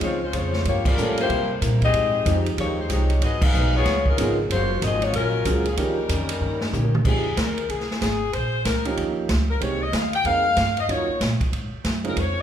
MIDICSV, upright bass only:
0, 0, Header, 1, 3, 480
1, 0, Start_track
1, 0, Tempo, 320000
1, 978, Time_signature, 4, 2, 24, 8
1, 18634, End_track
2, 0, Start_track
2, 0, Title_t, "Upright bass"
2, 0, Program_c, 0, 32
2, 19, Note_on_c, 0, 37, 73
2, 485, Note_off_c, 0, 37, 0
2, 495, Note_on_c, 0, 41, 91
2, 963, Note_off_c, 0, 41, 0
2, 977, Note_on_c, 0, 43, 81
2, 1444, Note_off_c, 0, 43, 0
2, 1458, Note_on_c, 0, 45, 91
2, 1924, Note_off_c, 0, 45, 0
2, 1942, Note_on_c, 0, 48, 78
2, 2406, Note_off_c, 0, 48, 0
2, 2425, Note_on_c, 0, 46, 88
2, 2888, Note_off_c, 0, 46, 0
2, 2900, Note_on_c, 0, 44, 78
2, 3365, Note_off_c, 0, 44, 0
2, 3386, Note_on_c, 0, 41, 98
2, 3848, Note_off_c, 0, 41, 0
2, 3866, Note_on_c, 0, 39, 77
2, 4328, Note_off_c, 0, 39, 0
2, 4348, Note_on_c, 0, 36, 85
2, 4809, Note_off_c, 0, 36, 0
2, 4822, Note_on_c, 0, 32, 87
2, 5285, Note_off_c, 0, 32, 0
2, 5309, Note_on_c, 0, 35, 99
2, 5769, Note_off_c, 0, 35, 0
2, 5785, Note_on_c, 0, 37, 80
2, 6247, Note_off_c, 0, 37, 0
2, 6264, Note_on_c, 0, 32, 92
2, 6726, Note_off_c, 0, 32, 0
2, 6745, Note_on_c, 0, 30, 85
2, 7207, Note_off_c, 0, 30, 0
2, 7227, Note_on_c, 0, 32, 99
2, 7688, Note_off_c, 0, 32, 0
2, 7702, Note_on_c, 0, 34, 79
2, 8165, Note_off_c, 0, 34, 0
2, 8181, Note_on_c, 0, 37, 95
2, 8645, Note_off_c, 0, 37, 0
2, 8653, Note_on_c, 0, 39, 71
2, 9121, Note_off_c, 0, 39, 0
2, 9133, Note_on_c, 0, 41, 92
2, 9601, Note_off_c, 0, 41, 0
2, 9612, Note_on_c, 0, 43, 77
2, 10080, Note_off_c, 0, 43, 0
2, 10090, Note_on_c, 0, 46, 86
2, 10559, Note_off_c, 0, 46, 0
2, 10571, Note_on_c, 0, 41, 71
2, 11040, Note_off_c, 0, 41, 0
2, 11051, Note_on_c, 0, 39, 91
2, 11520, Note_off_c, 0, 39, 0
2, 11534, Note_on_c, 0, 36, 73
2, 11815, Note_off_c, 0, 36, 0
2, 12021, Note_on_c, 0, 32, 77
2, 12485, Note_off_c, 0, 32, 0
2, 12503, Note_on_c, 0, 34, 73
2, 12966, Note_off_c, 0, 34, 0
2, 12980, Note_on_c, 0, 37, 88
2, 13444, Note_off_c, 0, 37, 0
2, 13460, Note_on_c, 0, 39, 78
2, 13925, Note_off_c, 0, 39, 0
2, 13938, Note_on_c, 0, 37, 83
2, 14404, Note_off_c, 0, 37, 0
2, 14417, Note_on_c, 0, 36, 81
2, 14880, Note_off_c, 0, 36, 0
2, 14889, Note_on_c, 0, 39, 86
2, 15359, Note_off_c, 0, 39, 0
2, 15368, Note_on_c, 0, 41, 76
2, 15839, Note_off_c, 0, 41, 0
2, 15849, Note_on_c, 0, 43, 92
2, 16320, Note_off_c, 0, 43, 0
2, 16333, Note_on_c, 0, 39, 71
2, 16615, Note_off_c, 0, 39, 0
2, 16808, Note_on_c, 0, 46, 93
2, 17092, Note_off_c, 0, 46, 0
2, 17289, Note_on_c, 0, 44, 77
2, 17573, Note_off_c, 0, 44, 0
2, 17768, Note_on_c, 0, 42, 79
2, 18239, Note_off_c, 0, 42, 0
2, 18248, Note_on_c, 0, 41, 77
2, 18634, Note_off_c, 0, 41, 0
2, 18634, End_track
3, 0, Start_track
3, 0, Title_t, "Muted upright bass strokes"
3, 11843, Note_on_c, 9, 29, 33
3, 11993, Note_off_c, 9, 29, 0
3, 16632, Note_on_c, 9, 29, 39
3, 16782, Note_off_c, 9, 29, 0
3, 17107, Note_on_c, 9, 29, 43
3, 17257, Note_off_c, 9, 29, 0
3, 17588, Note_on_c, 9, 29, 35
3, 17738, Note_off_c, 9, 29, 0
3, 18634, End_track
0, 0, End_of_file